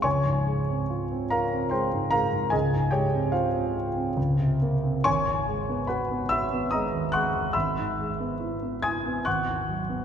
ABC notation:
X:1
M:3/4
L:1/16
Q:1/4=72
K:Dblyd
V:1 name="Grand piano"
[dad']6 [Bfb]2 [cgc']2 [Bfb]2 | [Aea]2 [Gdg]2 [Fcf]6 z2 | [K:G#phr] [cgc']4 [Bfb]2 [ebe']2 [d^ad']2 [fc'f']2 | [ebe']6 [gd'g']2 [fc'f']4 |]
V:2 name="Grand piano" clef=bass
D,, A,, A, C F C F C A, A,, A, A,, | D,, A,, A, C2 C F C D,, C, B, C | [K:G#phr] G,,, D,, G, B, F B, F B, G, D,, G, D,, | G,,, G,, G, B, E B, E B, G,,, D,, F, B, |]